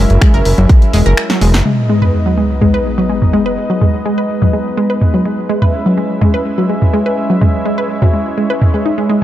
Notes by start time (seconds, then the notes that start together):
Already playing: F#3 C#4 E4 A#4 E5
0.10 F#1, closed hi-hat
0.21 G#3, finger snap, kick, closed hi-hat
0.34 F#1 A#4, closed hi-hat
0.45 F#1, open hi-hat
0.58 F#1 F#3, closed hi-hat
0.69 G#3, kick, closed hi-hat
0.82 closed hi-hat
0.93 E1 G#3, open hi-hat
1.06 F#1 A#4, closed hi-hat
1.17 finger snap, closed hi-hat
1.30 F#3, snare, closed hi-hat
1.41 E1 G#3, open hi-hat
1.54 F#1, snare, closed hi-hat
1.60 closed hi-hat
1.65 G#3 B3 D#4 B4 D#5, sub drop
1.90 G#3
2.02 B4, mid tom
2.26 F#3
2.38 G#3
2.61 G#3, mid tom
2.74 B4
2.98 F#3
3.10 G#3
3.22 mid tom
3.33 G#3
3.46 B4
3.70 F#3
3.81 G#3, mid tom
4.05 G#3
4.18 B4
4.42 F#3, mid tom
4.53 G#3
4.77 G#3
4.90 B4
5.01 mid tom
5.14 F#3
5.26 G#3
5.49 G#3 C#4 E4 E5
5.62 B4, mid tom
5.86 F#3
5.98 G#3
6.21 G#3, mid tom
6.34 B4
6.58 F#3
6.70 G#3
6.82 mid tom
6.93 G#3
7.06 B4
7.30 F#3
7.41 G#3 C#5, mid tom
7.65 G#3
7.78 B4
8.02 F#3, mid tom
8.14 G#3
8.38 G#3
8.50 B4
8.62 mid tom
8.74 G#3
8.86 D#4
8.98 G#3
9.10 G#3